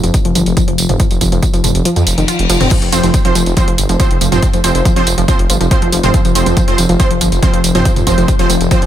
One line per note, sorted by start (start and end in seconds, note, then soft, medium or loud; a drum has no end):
0.00 0.10 F1 medium
0.00 2.70 F3 medium
0.00 0.10 F3 medium
0.00 closed hi-hat soft
0.00 tambourine soft
0.14 kick loud
0.14 closed hi-hat medium
0.14 tambourine soft
0.25 0.31 F1 medium
0.25 0.31 F3 medium
0.25 closed hi-hat medium
0.35 0.42 G1 loud
0.35 0.42 F3 medium
0.35 open hi-hat loud
0.35 tambourine medium
0.46 0.53 F1 medium
0.46 closed hi-hat medium
0.46 tambourine soft
0.57 0.64 F3 medium
0.57 kick loud
0.57 closed hi-hat medium
0.57 tambourine soft
0.68 0.74 F1 medium
0.68 0.74 F3 medium
0.68 closed hi-hat soft
0.78 0.85 F1 loud
0.78 open hi-hat medium
0.78 tambourine medium
0.89 0.96 F1 medium
0.89 0.96 F3 medium
0.89 closed hi-hat medium
0.89 mid tom medium
0.89 tambourine soft
1.00 1.07 F3 medium
1.00 kick loud
1.00 closed hi-hat loud
1.00 tambourine soft
1.11 1.17 F1 medium
1.11 closed hi-hat medium
1.11 tambourine soft
1.21 1.28 F1 loud
1.21 1.28 F3 medium
1.21 kick medium
1.21 open hi-hat loud
1.21 tambourine medium
1.32 1.38 F1 medium
1.32 1.39 F3 medium
1.32 closed hi-hat medium
1.32 tambourine soft
1.43 kick loud
1.43 closed hi-hat medium
1.43 tambourine soft
1.54 1.60 F1 medium
1.54 1.60 F3 medium
1.54 closed hi-hat medium
1.54 tambourine soft
1.64 1.71 F1 loud
1.64 1.71 F3 medium
1.64 mid tom medium
1.64 open hi-hat medium
1.64 tambourine medium
1.75 1.81 F1 medium
1.75 closed hi-hat medium
1.75 tambourine soft
1.85 1.92 F3 medium
1.85 closed hi-hat loud
1.85 tambourine soft
1.85 reverse cymbal medium
1.96 2.03 F2 medium
1.96 2.03 F3 medium
1.96 closed hi-hat medium
1.96 tambourine soft
2.07 2.13 F1 loud
2.07 open hi-hat loud
2.07 tambourine medium
2.18 2.24 F1 medium
2.18 2.20 D#3 medium
2.18 closed hi-hat medium
2.18 tambourine soft
2.28 2.31 F4 medium
2.28 closed hi-hat loud
2.28 tambourine soft
2.39 2.46 F1 medium
2.39 closed hi-hat medium
2.50 2.56 F1 loud
2.50 2.56 F3 loud
2.50 open hi-hat medium
2.50 tambourine medium
2.61 2.67 F1 medium
2.61 2.67 C4 loud
2.61 closed hi-hat medium
2.61 mid tom medium
2.61 tambourine soft
2.71 2.78 F3 medium
2.71 8.86 F3 medium
2.71 kick loud
2.71 closed hi-hat loud
2.71 crash loud
2.71 tambourine soft
2.82 2.88 F1 medium
2.82 closed hi-hat medium
2.82 tambourine soft
2.92 2.99 F1 loud
2.92 2.99 F3 medium
2.92 3.22 F3 medium
2.92 3.22 C4 medium
2.92 3.22 C5 medium
2.92 open hi-hat loud
2.92 tambourine medium
3.03 3.10 F1 medium
3.03 3.10 F3 medium
3.03 closed hi-hat medium
3.03 tambourine soft
3.14 kick loud
3.14 closed hi-hat loud
3.14 tambourine soft
3.25 3.31 F1 medium
3.25 3.35 F3 medium
3.25 3.31 F3 medium
3.25 3.35 C4 medium
3.25 3.35 C5 loud
3.25 closed hi-hat medium
3.35 3.42 F1 loud
3.35 3.42 F3 medium
3.35 open hi-hat medium
3.35 tambourine medium
3.46 3.53 F1 loud
3.46 closed hi-hat medium
3.46 tambourine soft
3.57 3.67 F3 medium
3.57 3.64 F3 medium
3.57 3.67 C4 medium
3.57 3.67 C5 loud
3.57 kick loud
3.57 closed hi-hat loud
3.57 tambourine soft
3.68 3.74 F1 medium
3.68 3.74 F3 medium
3.68 closed hi-hat medium
3.78 3.85 G1 loud
3.78 open hi-hat loud
3.78 tambourine medium
3.89 3.96 F1 medium
3.89 3.96 F3 medium
3.89 closed hi-hat medium
3.89 tambourine soft
4.00 4.16 F3 medium
4.00 4.07 F3 medium
4.00 4.16 C4 medium
4.00 4.16 C5 medium
4.00 kick loud
4.00 closed hi-hat loud
4.00 tambourine soft
4.11 4.17 F1 medium
4.11 closed hi-hat medium
4.21 4.28 F1 loud
4.21 4.28 F3 medium
4.21 open hi-hat loud
4.21 tambourine medium
4.32 4.38 F1 medium
4.32 4.48 F3 medium
4.32 4.39 F3 medium
4.32 4.48 C4 medium
4.32 4.48 C5 medium
4.32 closed hi-hat medium
4.32 mid tom medium
4.32 tambourine soft
4.42 kick loud
4.42 closed hi-hat loud
4.42 tambourine soft
4.53 4.60 F1 medium
4.53 4.60 F3 medium
4.53 closed hi-hat medium
4.53 tambourine soft
4.64 4.71 F1 loud
4.64 4.94 F3 medium
4.64 4.71 F3 medium
4.64 4.94 C4 medium
4.64 4.94 C5 medium
4.64 open hi-hat loud
4.64 tambourine medium
4.75 4.81 F1 medium
4.75 closed hi-hat medium
4.75 tambourine soft
4.85 4.92 F3 medium
4.85 kick loud
4.85 closed hi-hat loud
4.85 tambourine soft
4.96 5.03 F1 medium
4.96 5.03 F3 medium
4.96 5.06 F3 loud
4.96 5.06 C4 medium
4.96 5.06 C5 loud
4.96 closed hi-hat medium
5.07 5.13 F1 loud
5.07 open hi-hat loud
5.07 tambourine medium
5.18 5.24 F1 medium
5.18 5.24 F3 medium
5.18 closed hi-hat medium
5.18 tambourine soft
5.28 5.35 F3 medium
5.28 5.39 F3 medium
5.28 5.39 C4 medium
5.28 5.39 C5 loud
5.28 kick loud
5.28 closed hi-hat loud
5.28 tambourine soft
5.39 5.46 F1 medium
5.39 closed hi-hat medium
5.50 5.56 G1 loud
5.50 5.57 F3 medium
5.50 open hi-hat loud
5.50 tambourine medium
5.61 5.67 F1 medium
5.61 5.67 F3 medium
5.61 closed hi-hat medium
5.61 tambourine soft
5.71 5.88 F3 medium
5.71 5.88 C4 medium
5.71 5.88 C5 medium
5.71 kick loud
5.71 closed hi-hat loud
5.71 tambourine soft
5.82 5.88 F1 medium
5.82 5.89 F3 medium
5.82 closed hi-hat medium
5.92 5.99 F1 loud
5.92 5.99 F3 medium
5.92 open hi-hat loud
5.92 tambourine medium
6.03 6.10 F1 medium
6.03 6.20 F3 medium
6.03 6.20 C4 medium
6.03 6.20 C5 medium
6.03 closed hi-hat medium
6.03 mid tom medium
6.03 tambourine soft
6.14 6.21 F3 medium
6.14 kick loud
6.14 closed hi-hat loud
6.14 tambourine soft
6.25 6.31 F1 medium
6.25 6.31 F3 medium
6.25 closed hi-hat medium
6.25 tambourine soft
6.35 6.42 F1 loud
6.35 6.65 F3 medium
6.35 6.65 C4 medium
6.35 6.65 C5 medium
6.35 open hi-hat loud
6.35 tambourine medium
6.46 6.53 F1 medium
6.46 6.53 F3 medium
6.46 closed hi-hat medium
6.46 tambourine soft
6.57 6.64 F3 medium
6.57 kick loud
6.57 closed hi-hat loud
6.57 tambourine soft
6.68 6.74 F1 medium
6.68 6.78 F3 loud
6.68 6.78 C4 medium
6.68 6.78 C5 loud
6.68 closed hi-hat medium
6.78 6.85 F1 loud
6.78 6.85 F3 medium
6.78 open hi-hat loud
6.78 tambourine medium
6.89 6.96 F1 loud
6.89 6.96 F3 medium
6.89 closed hi-hat medium
6.89 tambourine soft
7.00 7.10 F3 medium
7.00 7.10 C4 medium
7.00 7.10 C5 loud
7.00 kick loud
7.00 closed hi-hat loud
7.00 tambourine soft
7.11 7.17 F1 medium
7.11 7.17 F3 medium
7.11 closed hi-hat medium
7.21 7.28 G1 loud
7.21 7.28 F3 medium
7.21 open hi-hat loud
7.21 tambourine medium
7.32 7.38 F1 medium
7.32 closed hi-hat medium
7.32 tambourine soft
7.42 7.59 F3 medium
7.42 7.49 F3 medium
7.42 7.59 C4 medium
7.42 7.59 C5 medium
7.42 kick loud
7.42 closed hi-hat loud
7.42 tambourine soft
7.54 7.60 F1 medium
7.54 7.60 F3 medium
7.54 closed hi-hat medium
7.64 7.71 F1 loud
7.64 open hi-hat loud
7.64 tambourine medium
7.75 7.81 F1 medium
7.75 7.81 F3 medium
7.75 7.91 F3 medium
7.75 7.91 C4 medium
7.75 7.91 C5 medium
7.75 closed hi-hat medium
7.75 mid tom medium
7.75 tambourine soft
7.85 7.92 F3 medium
7.85 kick loud
7.85 closed hi-hat medium
7.85 tambourine soft
7.96 8.03 F1 medium
7.96 closed hi-hat medium
7.96 mid tom medium
7.96 tambourine soft
8.07 8.13 F1 loud
8.07 8.37 F3 medium
8.07 8.14 F3 medium
8.07 8.37 C4 medium
8.07 8.37 C5 medium
8.07 kick medium
8.07 open hi-hat loud
8.07 tambourine medium
8.18 8.24 F1 medium
8.18 8.24 F3 medium
8.18 closed hi-hat medium
8.18 tambourine soft
8.28 kick loud
8.28 closed hi-hat medium
8.28 tambourine soft
8.39 8.46 F1 medium
8.39 8.49 F3 medium
8.39 8.46 F3 medium
8.39 8.49 C4 medium
8.39 8.49 C5 loud
8.39 closed hi-hat medium
8.50 8.56 F1 loud
8.50 8.57 F3 medium
8.50 open hi-hat loud
8.50 tambourine medium
8.61 8.67 F1 medium
8.61 closed hi-hat medium
8.61 tambourine soft
8.71 8.78 F3 medium
8.71 8.82 F3 medium
8.71 8.82 C4 medium
8.71 8.82 C5 loud
8.71 kick loud
8.71 closed hi-hat medium
8.71 tambourine soft
8.82 8.86 F1 medium
8.82 8.86 F3 medium
8.82 closed hi-hat medium